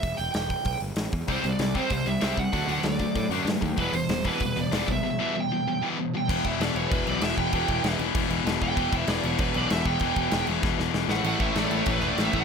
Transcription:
<<
  \new Staff \with { instrumentName = "Lead electric guitar" } { \time 4/4 \key e \minor \tempo 4 = 193 e''8 g''8 g''4. r4. | c''8 d''4 c''8 c''8 e''4 fis''8~ | fis''8 fis''8 d''4. r4. | b'8 c''4 b'8 b'8 d''4 e''8~ |
e''8 e''8 g''4. r4 g''8~ | \key e \dorian g''8 e''8 d''8 cis''8 b'8 d''8 e''8 g''8~ | g''4. r2 g''8~ | g''8 e''8 d''8 cis''8 b'8 d''8 e''8 g''8~ |
g''4. r2 fis''8 | fis''8 e''8 d''8 cis''8 b'8 d''8 e''8 g''8 | }
  \new Staff \with { instrumentName = "Distorted electric guitar" } { \clef bass \time 4/4 \key e \minor r1 | <c g c'>8 <c g>8 <c g>8 <c g c'>8 <c g>8 <c g>8 <c g c'>8 <c g>8 | <d fis a>8 <d fis a>8 <d fis>8 <d fis>8 <d fis>8 <d fis a>8 <d fis>8 <d fis>8 | <e g b>8 <e g>8 <e g>8 <e g b>8 <e g>8 <e g>8 <e g b>8 <e g>8 |
<e g>8 <e g b>8 <e g>8 <e g>8 <e g>8 <e g b>8 <e g>8 <e g>8 | \key e \dorian r1 | r1 | r1 |
r1 | <a, e a cis' e' a'>8 <a, e a cis' e' a'>8 <a, e a cis' e' a'>8 <a, e a cis' e' a'>8 <a, e a cis' e' a'>8 <a, e a cis' e' a'>8 <a, e a cis' e' a'>8 <a, e a cis' e' a'>8 | }
  \new Staff \with { instrumentName = "Distorted electric guitar" } { \clef bass \time 4/4 \key e \minor r1 | <c g c'>8 <c g>8 <c g>8 <c g c'>8 <c g>8 <c g>8 <c g c'>8 <c g>8 | <d a d'>8 <d a d'>8 <d a>8 <d a>8 <d a>8 <d a d'>8 <d a>8 <d a>8 | <e, b, e>8 <e, b,>8 <e, b,>8 <e, b, e>8 <e, b,>8 <e, b,>8 <e, b, e>8 <e, b,>8 |
<e, b,>8 <e, b, e>8 <e, b,>8 <e, b,>8 <e, b,>8 <e, b, e>8 <e, b,>8 <e, b,>8 | \key e \dorian <e, b, e>8 <e, b, e>8 <e, b, e>8 <e, b, e>8 <e, b, e>8 <e, b, e>8 <e, b, e>8 <e, b, e>8 | <e, b, e>8 <e, b, e>8 <e, b, e>8 <e, b, e>8 <e, b, e>8 <e, b, e>8 <e, b, e>8 <e, b, e>8 | <e, b, e>8 <e, b, e>8 <e, b, e>8 <e, b, e>8 <e, b, e>8 <e, b, e>8 <e, b, e>8 <e, b, e>8 |
<e, b, e>8 <e, b, e>8 <e, b, e>8 <e, b, e>8 <e, b, e>8 <e, b, e>8 <e, b, e>8 <a, e a>8 | <a, e a>8 <a, e a>8 <a, e a>8 <a, e a>8 <a, e a>8 <a, e a>8 <a, e a>8 <a, e a>8 | }
  \new Staff \with { instrumentName = "Overdriven electric guitar" } { \clef bass \time 4/4 \key e \minor r1 | r1 | r1 | r1 |
r1 | \key e \dorian <e, b, e>4. <e, b, e>2~ <e, b, e>8 | <e, b, e>4. <e, b, e>2~ <e, b, e>8 | <e, b, e>4. <e, b, e>2~ <e, b, e>8 |
<e, b, e>4. <e, b, e>2 <a, e a>8~ | <a, e a>4 <a, e a>2~ <a, e a>8 <a, e a>8 | }
  \new Staff \with { instrumentName = "Picked electric bass" } { \clef bass \time 4/4 \key e \minor e,,8 e,,8 e,,4 b,,8 g,,8 a,,8 e,8 | c,8 c,8 c,4 c,8 c,8 c,8 c,8 | d,8 d,8 d,4 a,8 fis,8 g,8 dis,8 | e,,8 e,,8 e,,4 e,,8 e,,8 e,,8 b,,8 |
r1 | \key e \dorian e,,8 e,,8 e,,8 e,,8 e,,8 b,,8 e,,8 e,,8 | e,,8 e,,8 e,,8 e,,8 e,,8 e,,8 e,,8 e,,8 | e,,8 e,,8 e,,8 e,,8 e,,8 b,,8 e,,8 e,,8 |
e,,8 e,,8 e,,8 e,,8 e,,8 e,,8 e,,8 a,,8 | a,,8 a,,8 a,,8 a,,8 a,,8 e,,8 a,,8 a,,8 | }
  \new DrumStaff \with { instrumentName = "Drums" } \drummode { \time 4/4 <hho bd>8 hho8 <hho sn>8 <hho bd>8 <hho bd>8 hho8 <hho sn>8 <hho bd>8 | <hho bd>8 hho8 <hho sn>8 <hho bd>8 <hho bd>8 hho8 <hho sn>8 <hho bd>8 | <hho bd>8 hho8 <hho sn>8 <hho bd>8 <hho bd>8 hho8 <hho sn>8 <hho bd>8 | <hho bd>8 hho8 <hho sn>8 <hho bd>8 <hho bd>8 hho8 <hho sn>8 <hho bd>8 |
r4 r4 r4 r4 | <cymc bd>8 <cymc bd>8 <cymc sn>8 cymc8 <cymc bd>8 cymc8 <cymc sn>8 <cymc bd>8 | <cymc bd>8 <cymc bd>8 <cymc sn>8 cymc8 <cymc bd>8 cymc8 <cymc sn>8 <cymc bd>8 | <cymc bd>8 <cymc bd>8 <cymc sn>8 cymc8 <cymc bd>8 cymc8 <cymc sn>8 <cymc bd>8 |
<cymc bd>8 <cymc bd>8 <cymc sn>8 cymc8 <bd sn>8 sn8 sn8 sn8 | cymc8 <cymc bd>8 <cymc sn>8 cymc8 <cymc bd>8 cymc8 <cymc sn>8 <cymc bd>8 | }
>>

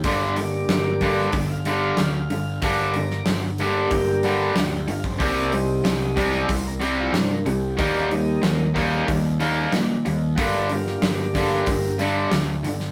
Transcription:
<<
  \new Staff \with { instrumentName = "Tonewheel organ" } { \time 4/4 \key g \minor \tempo 4 = 93 bes'16 d''8 <cis'' d''>4. <e'' f''>4.~ <e'' f''>16 | <bes' d''>4 r4 <fis' g'>4. f'16 c'16 | bes8 r4. c''16 bes'16 g'16 f'16 c'16 bes16 g8 | fis16 r2. r8. |
<bes fis' g'>8 <d' f'>8 <bes d'>8 <g bes>4 r4. | }
  \new Staff \with { instrumentName = "Tonewheel organ" } { \time 4/4 \key g \minor r8 <g bes d'>4. r2 | r4. <g bes d'>4. r4 | r8 <g c' ees'>4. r2 | <g bes ees'>4. <g bes ees'>8 r2 |
r8 <g bes>4. r2 | }
  \new Staff \with { instrumentName = "Overdriven electric guitar" } { \clef bass \time 4/4 \key g \minor <g, d g>8 <g, d>8 <g, d>8 <g, d g>8 <g, d>8 <g, d g>8 <g, d>8 <g, d>8 | <g, d g>8 <g, d>8 <g, d>8 <g, d g>8 <g, d>8 <g, d g>8 <g, d>8 <g, d>8 | <c g c'>8 <c g>8 <c g>8 <c g c'>8 <c g>8 <c g c'>8 <c g>8 <c g>8 | <ees bes ees'>8 <ees bes>8 <ees bes>8 <ees bes ees'>8 <ees bes>8 <ees bes ees'>8 <ees bes>8 <ees bes>8 |
<g, d g>8 <g, d>8 <g, d>8 <g, d g>8 <g, d>8 <g, d g>8 <g, d>8 <g, d>8 | }
  \new Staff \with { instrumentName = "Overdriven electric guitar" } { \clef bass \time 4/4 \key g \minor <g, d g>8 <g, d>8 <g, d>8 <g, d g>8 <g, d>8 <g, d g>8 <g, d>8 <g, d>8 | <g, d g>8 <g, d>8 <g, d>8 <g, d g>8 <g, d>8 <g, d g>8 <g, d>8 <g, d>8 | <c g c'>8 <c g>8 <c g>8 <c g c'>8 <c g>8 <c g c'>8 <c g>8 <c g>8 | <ees g bes>8 <ees g>8 <ees g>8 <ees g bes>8 <ees g>8 <ees g bes>8 <ees g>8 <ees g>8 |
<g, d g>8 <g, d>8 <g, d>8 <g, d g>8 <g, d>8 <g, d g>8 <g, d>8 <g, d>8 | }
  \new Staff \with { instrumentName = "Picked electric bass" } { \clef bass \time 4/4 \key g \minor g,,4 g,,4 g,,4 d,8 g,,8 | g,,4 g,,4 g,,4 d,8 g,,8 | c,4 c,4 c,4 g,8 c,8 | ees,4 ees,4 ees,4 bes,8 ees,8 |
g,,4 g,,4 g,,4 d,8 g,,8 | }
  \new DrumStaff \with { instrumentName = "Drums" } \drummode { \time 4/4 <hho bd>8 hho8 <hho sn>8 <hho bd>8 <hho bd>8 hho8 <hho sn>8 hho8 | <hho bd>8 hho16 sn16 <hho sn>8 hho8 <hho bd>8 hho8 <hho sn>8 hho16 bd16 | <hho bd>8 hho8 <hho sn>8 <hho bd>8 <hho bd>8 hho8 <hho sn>8 hho8 | <hho bd>8 hho8 <hho sn>8 <hho bd>8 <hho bd>8 hho8 <hho sn>8 hho8 |
<hho bd>8 hho16 sn16 <hho sn>8 <hho bd>8 <hho bd>8 hho8 <hho sn>8 hho16 sn16 | }
>>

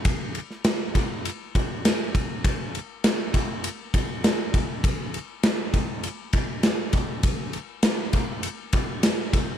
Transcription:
\new DrumStaff \with { instrumentName = "Drums" } \drummode { \time 4/4 \tempo 4 = 100 <bd cymr>8 cymr16 sn16 <cymr sn>8 <bd cymr>8 cymr8 <bd cymr>8 <cymr sn>8 <bd cymr>8 | <bd cymr>8 cymr8 <cymr sn>8 <bd cymr>8 cymr8 <bd cymr>8 <cymr sn>8 <bd cymr>8 | <bd cymr>8 cymr8 <cymr sn>8 <bd cymr>8 cymr8 <bd cymr>8 <cymr sn>8 <bd cymr>8 | <bd cymr>8 cymr8 <cymr sn>8 <bd cymr>8 cymr8 <bd cymr>8 <cymr sn>8 <bd cymr>8 | }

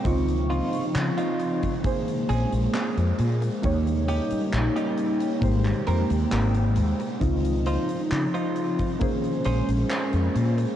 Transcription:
<<
  \new Staff \with { instrumentName = "Clean electric guitar" } { \time 4/4 \key des \lydian \tempo 4 = 67 r8 <c' ees' f'>8 r16 <c' ees' f'>8. r8 <c' des' aes'>16 r16 <c' des' aes'>16 r8. | r8 <des' ees' g'>8 r16 <des' ees' g'>8. r8 <c' g' bes'>16 r16 <c' g' bes'>16 r8. | r8 <ees' f' c''>8 r16 <ees' f' c''>8. r8 <des' aes' c''>16 r16 <des' aes' c''>16 r8. | }
  \new Staff \with { instrumentName = "Synth keys" } { \time 4/4 \key des \lydian <c' ees' f' des'''>2 <bes aes' c''>2 | <bes ees' g' des''>2 <aes bes g' c''>2 | <c' ees' f'>2 <bes des' aes' c''>2 | }
  \new Staff \with { instrumentName = "Ambient pad" } { \clef bass \time 4/4 \key des \lydian << { <des f ees'>2 aes2 | <des g ees'>2 <c aes g''>2 | <des f ees'>2 <aes des'>2 | } \\ { r2 bes2~ | bes1 | r2 bes2 | } >> }
  \new Staff \with { instrumentName = "Fretless electric bass" } { \clef bass \time 4/4 \key des \lydian des,8 r8 des16 r4 r16 bes,,16 bes,,16 r16 f,16 bes,16 r16 | ees,8 r8 bes,,16 r8. aes,,16 r16 f,16 ees,16 aes,,8 ees,16 r16 | des,8 r8 des16 r4 r16 bes,,16 bes,,16 r16 f,16 bes,16 r16 | }
  \new DrumStaff \with { instrumentName = "Drums" } \drummode { \time 4/4 <hh bd>16 hh16 hh16 hh16 <hc hh>16 hh16 hh16 <hh bd>16 <hh bd>16 hh16 hh16 hh16 <hc hh>16 hh16 hh16 hh16 | <hh bd>16 hh16 hh16 hh16 <hc hh>16 hh16 hh16 hh16 <hh bd>16 <hc hh>16 hh16 hh16 <hc hh>16 hh16 hh16 hh16 | <hh bd>16 hh16 hh16 hh16 <hc hh>16 hh16 hh16 <hh bd>16 <hh bd>16 hh16 hh16 hh16 <hc hh>16 hh16 hh16 hh16 | }
>>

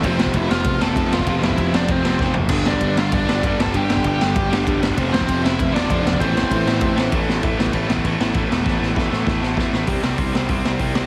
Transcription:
<<
  \new Staff \with { instrumentName = "Lead electric guitar" } { \time 4/4 \key a \minor \tempo 4 = 195 <c' c''>4 <e' e''>8 <f' f''>4 <a' a''>4 <f' f''>8 | <f' f''>8 <e' e''>4 <d' d''>8 <c' c''>4. r8 | r8 <d' d''>4 <f' f''>8 <d' d''>4. <a' a''>8 | <g' g''>4 <g' g''>2~ <g' g''>8 r8 |
r8 <c' c''>4 <e' e''>4 <d' d''>4. | <c' c''>2. r4 | r1 | r1 |
r1 | }
  \new Staff \with { instrumentName = "Overdriven electric guitar" } { \clef bass \time 4/4 \key a \minor <f, c f>2~ <f, c f>8 <f, c f>8 <f, c f>4 | <f, c f>2~ <f, c f>8 <f, c f>8 <f, c f>4 | <g, d g>2~ <g, d g>8 <g, d g>8 <g, d g>4 | <g, d g>2~ <g, d g>8 <g, d g>8 <g, d g>4 |
<f, c f>2~ <f, c f>8 <f, c f>8 <f, c f>4 | <a, e a>2~ <a, e a>8 <a, e a>8 <a, e a>4 | <a, e a>8 <a, e a>8 <a, e a>8 <a, e a>8 <a, e a>8 <a, e a>8 <a, e a>8 <a, e a>8 | <a, e a>8 <a, e a>8 <a, e a>8 <a, e a>8 <a, e a>8 <a, e a>8 <a, e a>8 <a, e a>8 |
<c g c'>8 <c g c'>8 <c g c'>8 <c g c'>8 <c g c'>8 <c g c'>8 <c g c'>8 <c g c'>8 | }
  \new Staff \with { instrumentName = "Picked electric bass" } { \clef bass \time 4/4 \key a \minor f,,8 f,,8 f,,8 f,,8 f,,8 f,,8 f,,8 f,,8 | f,,8 f,,8 f,,8 f,,8 f,,8 f,,8 f,,8 fis,,8 | g,,8 g,,8 g,,8 g,,8 g,,8 g,,8 g,,8 g,,8 | g,,8 g,,8 g,,8 g,,8 g,,8 g,,8 g,,8 g,,8 |
f,,8 f,,8 f,,8 f,,8 f,,8 f,,8 f,,8 f,,8 | a,,8 a,,8 a,,8 a,,8 a,,8 a,,8 a,,8 a,,8 | a,,8 a,,8 a,,8 a,,8 a,,8 a,,8 a,,8 e,,8 | a,,8 a,,8 a,,8 a,,8 a,,8 a,,8 a,,8 a,,8 |
c,8 c,8 c,8 c,8 c,8 c,8 c,8 c,8 | }
  \new DrumStaff \with { instrumentName = "Drums" } \drummode { \time 4/4 <bd cymr>8 sn16 bd16 <bd cymr>8 sn8 <bd cymr>8 sn8 <bd cymr>8 sn16 bd16 | <bd cymr>8 sn16 bd16 <bd cymr>8 sn8 <bd cymr>8 sn8 <bd sn>8 tomfh8 | <cymc bd cymr>8 sn16 bd16 <bd cymr>8 sn8 <bd cymr>8 sn8 <bd cymr>8 sn16 bd16 | <bd cymr>8 sn16 bd16 <bd cymr>8 sn8 <bd cymr>8 sn8 <bd cymr>8 sn16 bd16 |
<bd cymr>8 sn16 bd16 <bd cymr>8 sn8 <bd cymr>8 sn8 <bd cymr>8 sn16 bd16 | <bd cymr>8 sn16 bd16 <bd cymr>8 sn8 <bd cymr>8 sn8 <bd cymr>8 sn8 | <cymc bd>8 sn16 bd16 <cymc bd>8 sn16 bd16 <cymc bd>8 sn8 <cymc bd>8 sn8 | <bd sn>8 sn8 <bd sn>8 sn8 <bd sn>8 sn8 <bd sn>8 sn8 |
<hho bd>8 sn8 <hho bd>8 sn8 <hho bd>8 sn8 <hho bd>8 sn8 | }
>>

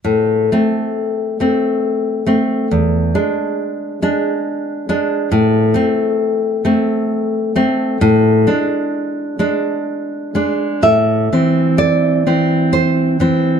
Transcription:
\new Staff \with { instrumentName = "Nylon-string guitar" } { \time 3/4 \key a \minor \tempo 4 = 66 << { r2. | r2. | r2. | r2. |
e''4 d''4 c''4 | } \\ { a,8 <a c'>4 <a c'>4 <a c'>8 | e,8 <gis d'>4 <gis d'>4 <gis d'>8 | a,8 <a c'>4 <a c'>4 <a c'>8 | a,8 <gis d'>4 <gis d'>4 <gis d'>8 |
a,8 <e c'>4 <e c'>4 <e c'>8 | } >> }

